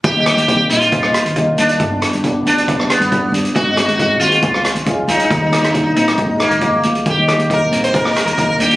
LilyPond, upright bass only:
\new Staff \with { instrumentName = "Upright bass" } { \clef bass \time 4/4 \key ees \major \tempo 4 = 137 ees,8. ees,8. bes,,4~ bes,,16 ees,8. ees,8 | g,8. g,8. d,4~ d,16 g,8. g,8 | aes,8. aes,8. ees,8 des,8. des,8. des,8 | ees,8. ees,8. bes,,8 aes,,8. aes,,8. d,8 |
ees,8. ees,8. bes,,4~ bes,,16 ees,8. ees,8 | }